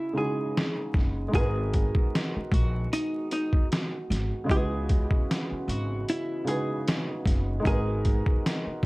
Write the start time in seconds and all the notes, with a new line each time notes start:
Already playing: C#3 G#3 E4 F#4 B4 D#5
0.13 C#3 G#3 D#4 E4
0.17 F#4 G#4
0.57 snare
0.94 F#1, kick, snare
1.28 G#3 D#4
1.34 G#1 D#3 G#3 B3 F#4 G#4 A#4, kick, closed hi-hat
1.39 B4
1.74 kick, closed hi-hat
1.95 kick
2.15 snare, closed hi-hat
2.36 muted upright bass stroke
2.52 A#1 F#4, kick, closed hi-hat
2.93 D#4, closed hi-hat
3.31 D#4, closed hi-hat
3.53 kick
3.72 snare, closed hi-hat
4.10 G#1, snare, closed hi-hat
4.44 C#3 G#3
4.48 C#2 E3 E4 G#4 D#5, kick, closed hi-hat
4.53 F#4 B4
4.89 kick, closed hi-hat
5.11 kick
5.31 snare, closed hi-hat
5.52 muted upright bass stroke
5.68 G#1 F#4, closed hi-hat
6.08 E4, closed hi-hat
6.44 C#3 G#3 D#4 E4, closed hi-hat
6.48 F#4 G#4 B4
6.88 snare, closed hi-hat
7.26 F#1, kick, snare, closed hi-hat
7.60 G#3 D#4
7.65 G#1 D#3 G#3 F#4 G#4 A#4, kick, closed hi-hat
7.71 B4
8.05 kick, closed hi-hat
8.26 kick
8.46 snare, closed hi-hat
8.67 muted upright bass stroke